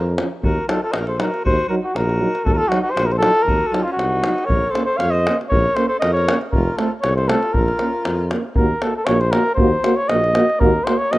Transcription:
Already playing: F2 F3 A#4
0.17 F3 C#4, davul high
0.42 D#2 F#4 A#4, davul low
0.67 F#3 D#4 F4 A4, davul high
0.82 F4 A4
0.91 A#1 A#4 C5 D#5, davul high
1.07 A4 C5, davul high
1.18 F#3 D#4 F#4 A#4, davul high
1.34 davul high
1.44 D#2 F#4 C5, davul low
1.68 F#3 D#4 F#4 A#4
1.81 D#4 F#4
1.92 A#1 F#4 A#4
1.96 davul high
2.09 davul high
2.19 F#3 D#4
2.35 davul high
2.43 D#2 F#4 A4, davul low
2.52 F#4 A#4
2.57 F4 A4
2.69 F#3 D#4 F#4, davul high
2.82 D#4 F#4
2.91 F#4 C5
2.96 A#1, davul high
3.06 F#4 A#4
3.12 A4 C5, davul high
3.18 F#3 D#4 F4 A4
3.23 davul high
3.42 D#2 A#4
3.48 F#4, davul low
3.67 A4
3.72 F#3 D#4 F4, davul high
3.83 C#4 F4
3.88 davul high
3.93 F#4
3.97 C2 D#4, davul high
4.23 F#3 D#4, davul high
4.38 davul high
4.45 A#1 A#4 C#5
4.50 davul low
4.69 A4 C5
4.74 A#3 C#4, davul high
4.85 A4 C5
4.97 F2 C#5 F5, davul high
5.10 C5 D#5
5.15 davul high
5.25 A#3 C#4, davul high
5.41 davul high
5.49 A#1 A#4 C#5, davul low
5.74 A#3 C#4 A4 C5, davul high
5.88 A4 C5
6.00 F2 A#4 D#5, davul high
6.13 A#4 C#5, davul high
6.28 A#3 C#4, davul high
6.41 davul high
6.52 F1 F4 A#4, davul low
6.77 A3 C4 F4 A4, davul high
7.02 C2 A4 C#5, davul high
7.16 A4 C5, davul high
7.28 A3 C4 F4 A4, davul high
7.43 davul high
7.53 A#1 F4 A#4, davul low
7.68 davul high
7.79 A#3 C#4, davul high
8.05 F2, davul high
8.31 A#3 C#4, davul high
8.56 D#2 A#3 F#4 A#4, davul low
8.82 A#3 F#4 A4, davul high
8.96 A4
9.05 A#1 A#3 F#4 C#5, davul high
9.20 C5, davul high
9.31 A#3 F#4 A#4, davul high
9.55 A#3 C5, davul low
9.60 D#2 F#4
9.84 A#3 F#4, davul high
9.96 C#5
10.09 A#1 A#3 F#4 D#5, davul high
10.24 davul high
10.35 A#3 F#4, davul high
10.50 davul high
10.60 D#2 A#3 F#4 A#4, davul low
10.84 A#3 F#4 C5, davul high
10.98 C#5
11.11 A#1 A#3 F#4 D#5, davul high

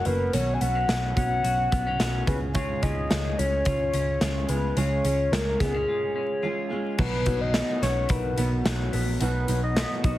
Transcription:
Already playing: F#3 C#4 F#4
0.05 F#1 F#3 A#3 C#4 F#4 A#4 B4, closed hi-hat
0.33 B1 B2 D#3 F#3 B3 C#4 F#4 C#5, closed hi-hat
0.54 G#5
0.60 B1 F#3 B3 C#4 F#4 F#5, closed hi-hat
0.75 C#4
0.88 B1 F#3 B3 C#4 F#4, snare, closed hi-hat
1.16 B1 F#3 B3 C#4 F#4 F#5, kick, closed hi-hat
1.44 B1 F#4, closed hi-hat
1.72 B1 B3, kick, closed hi-hat
1.87 C#4
1.99 B1 F#3 B3 C#4 F#4, snare, closed hi-hat
2.26 C#2 C#3 C#4 F4 G#4 B4, kick, closed hi-hat
2.54 C#3 G#3 C#4 F4 G#4 C#5, kick, closed hi-hat
2.82 C#2 C#4 F4 G#4 D#5, kick, closed hi-hat
3.09 C#2 G#3 C#4 F4 G#4, snare, closed hi-hat
3.37 C#2 C#4 F4 G#4 C#5, closed hi-hat
3.65 C#2 F4, kick, closed hi-hat
3.94 C#2 C#4, closed hi-hat
4.21 C#2 G#3 C#4 F4 G#4, snare, closed hi-hat
4.49 C#2 G#3 C#4 F4 G#4 B4, closed hi-hat
4.77 C#2 C#3 G#3 C#4 F4 G#4 C#5, closed hi-hat
5.04 C#2 C#4 F4 G#4, closed hi-hat
5.32 C#2 G#3 C#4 F4 G#4 A#4, snare, closed hi-hat
5.60 C#2 B3 C#4 F4 G#4, kick, snare, closed hi-hat
5.74 C#4
5.88 F4
6.16 C#4
6.43 G#3 C#4 F4 G#4
6.70 G#3 C#4 F4 G#4
6.98 B1 B2 F#3 B3 D#4 F#4 B4, kick, crash
7.26 B1 F#3 B3 D#4 F#4, kick, closed hi-hat
7.41 D#5
7.53 F#3 B3 D#4 F#4, snare, closed hi-hat
7.81 B1 B3 D#4 F#4 C#5, snare, closed hi-hat
8.09 B1 D#3 B4, kick, closed hi-hat
8.36 B1 B3 D#4 F#4, closed hi-hat
8.64 B1 F#3 B3 D#4 F#4, snare, closed hi-hat
8.93 A#1 B3, open hi-hat
9.20 B1 B2 F#3 B3 D#4 F#4 B4, closed hi-hat
9.48 B1 F#3 B3 D#4 F#4, closed hi-hat
9.63 D#5
9.75 F#3 B3 D#4 F#4, snare, closed hi-hat
10.03 B1 B3 D#4 F#4 D#5, kick, closed hi-hat

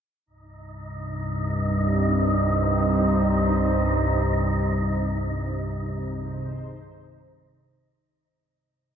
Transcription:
0.26 C2 G2 C4 D#4 D#5
0.72 G4 C5
2.00 D#5
4.13 C3
5.44 D#4
5.87 G#4 C5

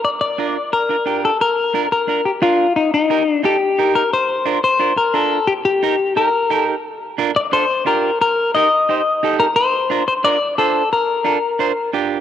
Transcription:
0.05 D5
0.21 D5
0.38 D4 F4 A#4
0.73 A#4
0.89 D4 F4 A#4
1.06 D4 F4 G4
1.25 A4
1.41 A#4
1.74 D4 F4 A#4
1.92 A#4
2.08 D4 F4 A#4
2.25 G4
2.41 D4 F4 A#4
2.76 D#4
2.94 D#4
3.10 D#4 G4 A#4
3.29 D4
3.43 D#4 G4 A4
3.79 D#4 G4 A#4
3.96 A#4
4.14 C5
4.46 D4 F4 A#4
4.64 C5
4.80 D4 F4 A#4
4.98 A#4
5.14 D4 F4 A4 A#4
5.48 G4
5.65 G4
5.83 D#4 G4 A#4
6.16 D#4 G4 A#4
6.50 D#4 G4 A4 A#4
7.18 D4 F4 A#4
7.36 D5
7.52 D4 F4 A4 C5
7.86 D4 F4 G4 A#4
8.21 A#4
8.55 D#4 G4 A#4 D#5
8.89 D#4 G4 C5
9.23 D#4 G4 A4
9.40 A#4
9.56 C5
9.90 D4 F4 A#4
10.08 C5
10.24 D4 F4 A#4 D5
10.58 D4 F4 A4 C5
10.93 A#4
11.24 D4 F4 A4
11.59 D4 F4 C5
11.93 D4 F4 G4

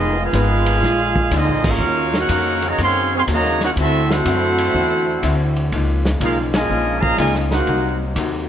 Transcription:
Already playing: F1 D#3 F3 G#3 B3 D#4 F4 G#4 D#5
0.18 G#3 B3 F4
0.24 D#4 G#4 B4 F5
0.33 G#1 F3 B3 D#4 G#4, kick, hi-hat pedal, ride
0.66 ride
0.81 A#1 A#2 D3 G#3 A#3 D4, kick, snare
0.86 F4
1.16 kick
1.31 D2 A#2 G#3 D4 D#4 F4, kick, hi-hat pedal, ride
1.35 C4 F4 G#4 D#5
1.47 A#1
1.63 G#1, kick, crash
1.67 A#3 C#4 D#4 F4 A#4 C#5 F5
1.78 D#2 C#3 D#3 D#4 F#4
1.83 A#3 C#4 F#4
2.14 A#3 C#4 F#4 A#4, snare
2.18 D#4 C#5 F#5
2.29 F2 D#3 A#3 C#4 F#4, kick, hi-hat pedal, ride
2.62 C#3 F#3 A#3, ride
2.68 F#4 C#5 D#5 A#5
2.78 F#2 D#3 A#3 C4 C#4 F#4 G#4 C#5, kick, ride
2.83 F5 C6
3.15 C4 G#4 C#5 F5 C6
3.28 D#2 C#3 D#3 F#3 A#3 C#4 F#4, kick, hi-hat pedal, ride
3.33 F#4 C#5 D#5 A#5
3.44 snare
3.61 A#3 C#4 D#4 F#4 A#4 C#5 F#5, snare, ride
3.75 D2 D3 C4 E4, kick, ride
3.79 A3 C4 E4 F#4 A4 E5
4.11 A3 C4 E4 F#4 A4 C5 F#5, snare
4.25 F#2 D3 C4 E4 F#4, kick, hi-hat pedal, ride
4.58 ride
4.73 E2 D3 C4 E4 F#4, kick
5.22 D2 D3 C4 E4 F#4, kick, hi-hat pedal, ride
5.56 ride
5.72 C#2 C#3 F3 A#3 D#4 F4, kick, ride
6.05 snare
6.20 B1 C#3 G#3 A#3 D#4 F4 G#4 A#4 F5, kick, hi-hat pedal, ride
6.53 A#2 F3 G#3 F4 A#4 D#5 G#5, snare, ride
6.70 A#1 C#3 A#3 D#4 F4
6.99 A#2 F3 A#3 G#4 D#5 F5 A#5, kick
7.16 C#2 A#2 C#3 F3 G#3 A#3 D#4 F4 A#4 D#5 G#5, kick, hi-hat pedal, ride
7.35 snare
7.50 A#3 D#4 F#4 A#4 C5 F#5, snare
7.67 C2 C3 F#3 A#3 D#4 F#4, kick, ride
8.16 D#2 C3 A#3 D#4 F#4, kick, hi-hat pedal, ride

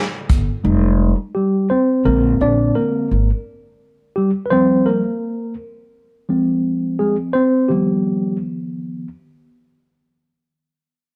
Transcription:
Already playing: F4 A4
0.29 G1, kick, closed hi-hat
0.64 F1 G3 G#3 D#4
1.35 G3 G4
1.70 C4 C5
2.05 A#1 D3 G#3 A#3 C4 A#4
2.41 A#1 D4 D5
2.75 A#3 A#4
3.11 G#1
4.16 G3 G4
4.46 B4
4.50 F3 G3 C4 C5
4.86 A#3 A#4
6.29 F3 G#3 C4
6.99 G#3 G#4
7.33 C4 C5
7.68 D#3 F3 G3 B3 G4

